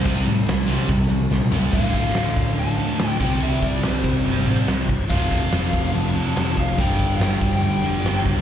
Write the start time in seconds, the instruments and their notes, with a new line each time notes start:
0.05 picked electric bass C2, overdriven electric guitar C3 G3 C4, kick, crash
0.27 picked electric bass A2, overdriven electric guitar C3 G3
0.48 picked electric bass C2, overdriven electric guitar C3 G3, snare, open hi-hat
0.68 picked electric bass C2, overdriven electric guitar C3 G3 C4
0.89 picked electric bass C2, overdriven electric guitar C3 G3, kick, open hi-hat
1.11 picked electric bass C2, overdriven electric guitar C3 G3
1.31 picked electric bass C2, overdriven electric guitar C3 G3, snare
1.42 high tom
1.52 overdriven electric guitar C3 G3 C4, mid tom
1.63 floor tom
1.73 picked electric bass D1, overdriven electric guitar D2 A2, lead electric guitar F5, kick, crash
1.77 overdriven electric guitar D3
1.94 kick, crash
2.14 picked electric bass D1, snare, crash
2.36 picked electric bass D1, kick, crash
2.57 picked electric bass D1, distorted electric guitar D2 A2 D3, lead electric guitar A5, crash
2.78 picked electric bass D2, overdriven electric guitar A2 D3, crash
2.83 overdriven electric guitar D2
2.99 picked electric bass D1, overdriven electric guitar D2 A2, snare, crash
3.03 overdriven electric guitar D3
3.08 lead electric guitar G5
3.20 picked electric bass C2, overdriven electric guitar C3 G3 C4, lead electric guitar G5, kick, crash
3.40 picked electric bass C2, lead electric guitar E5, crash
3.62 picked electric bass C2, lead electric guitar D5, kick, crash
3.83 picked electric bass C2, lead electric guitar C5, snare, crash
4.03 picked electric bass C2, distorted electric guitar C3 G3 C4, kick, crash
4.23 picked electric bass G1, overdriven electric guitar C3, crash
4.29 overdriven electric guitar G3 C4
4.46 picked electric bass A1, overdriven electric guitar G3 C4, crash
4.50 overdriven electric guitar C3
4.67 picked electric bass C2, snare, crash
4.89 picked electric bass G1, kick, crash
5.09 picked electric bass F1, overdriven electric guitar F2 C3 F3, lead electric guitar F5, kick, crash
5.31 kick, crash
5.52 picked electric bass F1, snare, crash
5.73 picked electric bass F1, kick, crash
5.94 picked electric bass F1, distorted electric guitar F2 C3 F3, lead electric guitar A5, crash
6.15 picked electric bass F2, overdriven electric guitar C3 F3, crash
6.19 overdriven electric guitar F2
6.35 overdriven electric guitar F2 C3 F3, picked electric bass F2, snare, crash
6.57 picked electric bass F1, lead electric guitar F5, kick, crash
6.77 picked electric bass G1, overdriven electric guitar G2 D3, lead electric guitar G5, kick, crash
6.81 overdriven electric guitar G3
6.99 picked electric bass G1, kick, crash
7.15 picked electric bass G1, lead electric guitar F5
7.21 lead electric guitar G5, snare, crash
7.41 picked electric bass G1, kick, crash
7.61 picked electric bass D2, distorted electric guitar G2 D3 G3, lead electric guitar G5, crash
7.81 picked electric bass F1, overdriven electric guitar D3 G3, crash
7.86 overdriven electric guitar G2
8.03 picked electric bass G1, overdriven electric guitar G2 D3, snare, crash
8.07 overdriven electric guitar G3
8.26 picked electric bass C#2, kick, crash